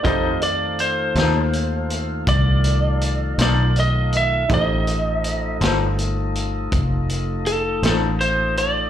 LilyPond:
<<
  \new Staff \with { instrumentName = "Lead electric guitar" } { \time 12/8 \key f \lydian \tempo 4. = 54 ees''8 d''8 c''2 d''4. d''8 ees''8 e''8 | ees''2 r2 a'8 a'8 c''8 d''8 | }
  \new Staff \with { instrumentName = "Upright piano" } { \time 12/8 \key f \lydian <f' g' a' c''>1. | <ees' g' a' c''>1. | }
  \new Staff \with { instrumentName = "Clean electric guitar" } { \time 12/8 \key f \lydian <f ees' a' c''>8 r4 <f ees' a' c''>8 r2 r8 <f ees' a' c''>8 r4 | r4. <f ees' a' c''>8 r2 r8 <f ees' a' c''>8 r4 | }
  \new Staff \with { instrumentName = "Tonewheel organ" } { \time 12/8 \key f \lydian <ees a f'>1. | <f a ees'>1. | }
  \new Staff \with { instrumentName = "Fingered electric bass" } { \clef bass \time 12/8 \key f \lydian f,4. ees,4. c,4. b,,4. | a,,4. g,,4. f,,4. a,,4. | }
  \new DrumStaff \with { instrumentName = "Drums" } \drummode { \time 12/8 <hh bd>8 hh8 hh8 <hh sn>8 hh8 hh8 <hh bd>8 hh8 hh8 <hh sn>8 hh8 hh8 | <hh bd>8 hh8 hh8 <hh sn>8 hh8 hh8 <hh bd>8 hh8 hh8 <hh sn>8 hh8 hh8 | }
>>